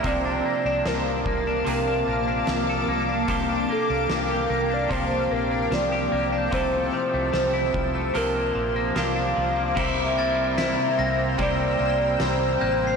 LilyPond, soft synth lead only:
\new Staff \with { instrumentName = "Soft synth lead" } { \time 4/4 \key c \mixolydian \tempo 4 = 74 d''8. d''16 bes'2~ bes'8 r8 | r8 a'8 bes'8. d''16 c''8 bes'8 d''4 | c''2 bes'4 f''4 | e''2 d''4 c''4 | }